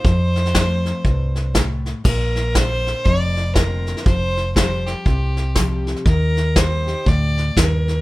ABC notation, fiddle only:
X:1
M:4/4
L:1/8
Q:"Swing" 1/4=120
K:Bb
V:1 name="Fiddle"
c6 z2 | B2 c2 d2 B2 | c2 c G4 z | B2 c2 d2 B2 |]